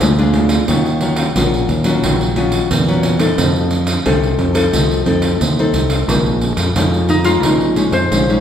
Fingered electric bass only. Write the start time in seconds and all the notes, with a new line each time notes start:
0.01 D2
0.68 D#2
1.36 A#1
1.69 D#2
2.03 A#1
2.71 E2
3.38 F2
4.06 C2
4.39 F2
4.73 C2
5.06 F2
5.41 D#2
5.73 C2
6.08 A#1
6.57 F2
6.76 F2
7.44 A#1
7.92 F2
8.11 A#1